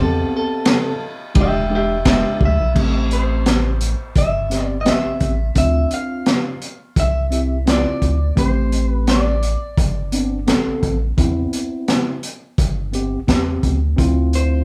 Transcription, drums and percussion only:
0.65 snare, ride bell
1.35 kick, ride bell
2.05 kick, snare, ride bell
2.41 kick
2.76 kick, crash
3.11 closed hi-hat
3.46 snare, closed hi-hat
3.81 closed hi-hat
4.16 kick, closed hi-hat
4.51 snare, closed hi-hat
4.86 snare, closed hi-hat
5.20 kick, closed hi-hat
5.55 kick, closed hi-hat
5.91 closed hi-hat
6.26 snare, closed hi-hat
6.62 closed hi-hat
6.96 kick, closed hi-hat
7.32 closed hi-hat
7.67 snare, closed hi-hat
8.02 kick, closed hi-hat
8.37 kick, closed hi-hat
8.72 closed hi-hat
9.07 snare, closed hi-hat
9.43 closed hi-hat
9.78 kick, closed hi-hat
10.12 closed hi-hat
10.48 snare, closed hi-hat
10.83 kick, closed hi-hat
11.18 kick, closed hi-hat
11.53 closed hi-hat
11.88 snare, closed hi-hat
12.23 closed hi-hat
12.58 kick, closed hi-hat
12.94 closed hi-hat
13.28 kick, snare, closed hi-hat
13.63 kick, closed hi-hat
13.98 kick, closed hi-hat
14.33 closed hi-hat

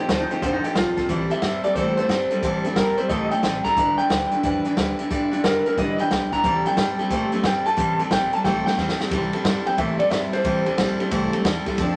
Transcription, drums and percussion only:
0.09 snare, closed hi-hat
0.31 closed hi-hat
0.42 kick, closed hi-hat
0.64 closed hi-hat
0.75 snare, closed hi-hat
0.97 kick, snare, closed hi-hat
1.09 kick, closed hi-hat
1.31 closed hi-hat
1.42 snare, closed hi-hat
1.64 closed hi-hat
1.75 kick, closed hi-hat
1.97 closed hi-hat
2.09 snare, closed hi-hat
2.31 closed hi-hat
2.42 kick, closed hi-hat
2.64 closed hi-hat
2.76 snare, closed hi-hat
2.98 closed hi-hat
3.09 kick, closed hi-hat
3.31 closed hi-hat
3.43 snare, closed hi-hat
3.65 kick, snare, closed hi-hat
3.77 kick, closed hi-hat
3.98 closed hi-hat
4.10 snare, closed hi-hat
4.31 closed hi-hat
4.43 kick, closed hi-hat
4.65 closed hi-hat
4.77 snare, closed hi-hat
4.99 closed hi-hat
5.11 kick, closed hi-hat
5.33 closed hi-hat
5.44 snare, closed hi-hat
5.66 closed hi-hat
5.77 kick, closed hi-hat
5.99 closed hi-hat
6.11 snare, closed hi-hat
6.32 kick, closed hi-hat
6.44 kick, closed hi-hat
6.66 closed hi-hat
6.77 snare, closed hi-hat
6.99 closed hi-hat
7.10 kick, closed hi-hat
7.32 closed hi-hat
7.43 snare, closed hi-hat
7.66 closed hi-hat
7.78 kick, closed hi-hat
7.99 closed hi-hat
8.11 snare, closed hi-hat
8.33 closed hi-hat
8.44 kick, snare
8.67 snare
8.78 snare
8.89 snare
9.00 snare
9.11 kick, ride
9.33 ride
9.45 snare, ride
9.67 ride
9.78 kick, ride
10.00 ride
10.11 snare, ride
10.33 snare, ride
10.45 kick, ride
10.66 ride
10.78 snare, ride
11.00 ride
11.11 kick, ride
11.33 ride
11.45 snare, ride
11.66 kick, snare, ride
11.78 kick, ride

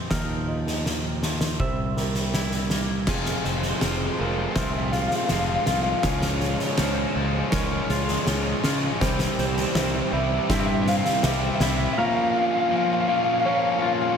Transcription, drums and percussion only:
0.11 kick, snare
0.67 snare
0.86 snare
1.23 snare
1.41 snare
1.60 kick
1.97 snare
2.15 snare
2.34 snare
2.52 snare
2.70 snare
3.07 kick, snare, crash
3.26 snare
3.45 snare
3.63 snare
3.81 snare
4.56 kick, snare
4.92 snare
5.11 snare
5.29 snare
5.66 snare
6.03 kick, snare
6.22 snare
6.41 snare
6.59 snare
6.78 snare
7.52 kick, snare
7.89 snare
8.08 snare
8.27 snare
8.64 snare
9.01 kick, snare
9.19 snare
9.38 snare
9.57 snare
9.75 snare
10.50 kick, snare
10.87 snare
11.05 snare
11.23 snare
11.60 snare

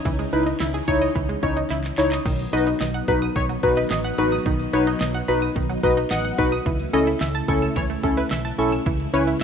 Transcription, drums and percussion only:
0.05 kick, closed hi-hat
0.19 closed hi-hat
0.33 closed hi-hat
0.47 closed hi-hat
0.60 snare, clap, closed hi-hat
0.74 closed hi-hat
0.88 kick, open hi-hat
1.02 closed hi-hat
1.15 kick, closed hi-hat
1.29 closed hi-hat
1.43 kick, closed hi-hat
1.57 closed hi-hat
1.70 clap, closed hi-hat
1.84 clap, closed hi-hat
1.98 clap, open hi-hat
2.12 clap, closed hi-hat
2.26 kick, closed hi-hat, crash
2.39 closed hi-hat
2.53 closed hi-hat
2.67 closed hi-hat
2.80 snare, clap, closed hi-hat
2.94 closed hi-hat
3.08 kick, open hi-hat
3.22 closed hi-hat
3.36 kick, closed hi-hat
3.50 closed hi-hat
3.63 kick, closed hi-hat
3.77 closed hi-hat
3.91 snare, clap, closed hi-hat
4.04 closed hi-hat
4.18 closed hi-hat
4.32 closed hi-hat
4.46 kick, closed hi-hat
4.60 closed hi-hat
4.73 closed hi-hat
4.87 closed hi-hat
5.01 snare, clap, closed hi-hat
5.15 closed hi-hat
5.28 open hi-hat
5.42 closed hi-hat
5.56 kick, closed hi-hat
5.70 closed hi-hat
5.83 kick, closed hi-hat
5.97 closed hi-hat
6.11 snare, clap, closed hi-hat
6.24 closed hi-hat
6.38 kick, closed hi-hat
6.52 closed hi-hat
6.66 kick, closed hi-hat
6.80 closed hi-hat
6.94 closed hi-hat
7.07 closed hi-hat
7.21 snare, clap, closed hi-hat
7.35 closed hi-hat
7.48 kick, open hi-hat
7.62 closed hi-hat
7.76 kick, closed hi-hat
7.90 closed hi-hat
8.03 kick, closed hi-hat
8.17 closed hi-hat
8.31 snare, clap, closed hi-hat
8.45 closed hi-hat
8.59 closed hi-hat
8.72 closed hi-hat
8.86 kick, closed hi-hat
9.00 closed hi-hat
9.14 closed hi-hat
9.27 closed hi-hat

